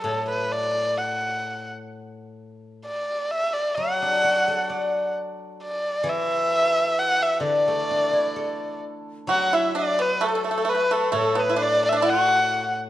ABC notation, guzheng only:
X:1
M:2/4
L:1/16
Q:1/4=65
K:none
V:1 name="Guzheng"
[A,,^F,]8- | [A,,^F,]4 z4 | ^F, D ^F A d4- | d2 E,6 |
D, A, D E A4 | ^F,8 | A,,8 |]